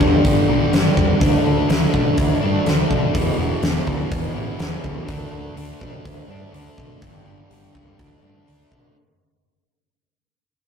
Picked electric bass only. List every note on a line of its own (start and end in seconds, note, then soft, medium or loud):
0.01 0.16 E2 medium
0.24 0.40 G1 medium
0.49 0.64 B1 medium
0.73 0.88 G1 medium
0.97 1.12 E2 medium
1.21 1.36 D2 medium
1.46 1.61 D2 medium
1.69 1.85 D2 medium
1.94 2.09 B2 medium
2.18 2.33 D2 medium
2.43 2.58 G2 medium
2.67 2.82 D2 medium
2.90 3.05 B2 medium
3.15 3.30 E1 medium
3.38 3.53 E1 medium
3.62 3.77 E1 medium
3.87 4.02 D2 medium
4.11 4.27 E1 medium
4.36 4.51 A1 medium
4.59 4.75 E1 medium
4.84 4.99 D2 medium
5.08 5.23 D2 medium
5.32 5.47 D2 medium
5.56 5.72 D2 medium
5.81 5.96 B2 medium
6.05 6.21 D2 medium
6.28 6.44 G2 medium
6.52 6.68 D2 medium
6.78 6.93 B2 medium
7.02 7.17 G1 medium
7.26 7.41 G1 medium
7.50 7.65 G1 medium
7.75 7.90 C#2 medium
7.99 8.15 D2 medium
8.23 8.38 G2 medium
8.48 8.63 D2 medium
8.72 8.87 B2 medium